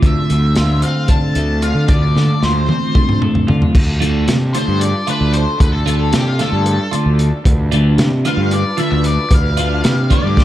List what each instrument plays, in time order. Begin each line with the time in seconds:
Already playing: clean electric guitar A3 C4 F4
0.02 fingered electric bass D2, clean electric guitar D3, kick, closed hi-hat
0.06 lead electric guitar E5
0.30 fingered electric bass D2, clean electric guitar A3, closed hi-hat
0.55 fingered electric bass D2, clean electric guitar F4, snare, closed hi-hat
0.82 clean electric guitar C4, lead electric guitar F5, closed hi-hat
1.08 clean electric guitar D3, lead electric guitar A5, kick, closed hi-hat
1.35 fingered electric bass D2, clean electric guitar A3, closed hi-hat
1.62 clean electric guitar F4, lead electric guitar F5, closed hi-hat
1.75 fingered electric bass D3
1.88 fingered electric bass D2, clean electric guitar D3, lead electric guitar D5, kick, closed hi-hat
2.15 fingered electric bass D3, clean electric guitar A3, snare
2.42 fingered electric bass D2, clean electric guitar F4, lead electric guitar C5, snare
2.69 clean electric guitar C4, high tom
2.94 clean electric guitar D3, kick, mid tom
3.09 mid tom
3.21 clean electric guitar A3, mid tom
3.35 floor tom
3.48 fingered electric bass D3, clean electric guitar F4, floor tom
3.62 floor tom
3.75 fingered electric bass D2, string section D4 F4 A4, kick, crash
4.00 clean electric guitar D3 A3 D4 F4, closed hi-hat
4.28 fingered electric bass C3, snare, closed hi-hat
4.53 clean electric guitar D3 A3 D4 F4, lead electric guitar C5, closed hi-hat
4.68 fingered electric bass G2
4.80 lead electric guitar D5, closed hi-hat
5.07 clean electric guitar D3 A3 D4 F4, lead electric guitar B4, closed hi-hat
5.21 fingered electric bass D2
5.33 lead electric guitar C5, closed hi-hat
5.60 fingered electric bass D2, lead electric guitar B4, kick, closed hi-hat
5.73 lead electric guitar A4
5.86 clean electric guitar D3 A3 D4 F4, lead electric guitar A4, closed hi-hat
6.13 fingered electric bass C3, lead electric guitar G4, snare, closed hi-hat
6.27 lead electric guitar F4
6.39 clean electric guitar D3 A3 D4 F4, lead electric guitar A4, snare, closed hi-hat
6.52 fingered electric bass G2
6.66 closed hi-hat
6.91 clean electric guitar D3 A3 D4 F4, closed hi-hat
7.06 fingered electric bass D2
7.19 closed hi-hat
7.45 fingered electric bass D2, string section B4, kick, closed hi-hat
7.71 clean electric guitar D3 A3 D4 F4, closed hi-hat
7.98 fingered electric bass C3, snare, closed hi-hat
8.25 clean electric guitar D3 A3 D4 F4, lead electric guitar F5, closed hi-hat
8.37 fingered electric bass G2
8.51 lead electric guitar D5, closed hi-hat
8.77 clean electric guitar D3 A3 D4 F4, lead electric guitar E5, closed hi-hat
8.92 fingered electric bass D2, lead electric guitar E5
9.04 lead electric guitar D5, closed hi-hat
9.31 fingered electric bass D2, lead electric guitar F5, kick, closed hi-hat
9.57 clean electric guitar D3 A3 D4 F4, closed hi-hat
9.84 fingered electric bass C3, snare, closed hi-hat
10.10 clean electric guitar D3 A3 D4 F4, lead electric guitar D5, kick, closed hi-hat
10.24 fingered electric bass G2
10.37 kick, snare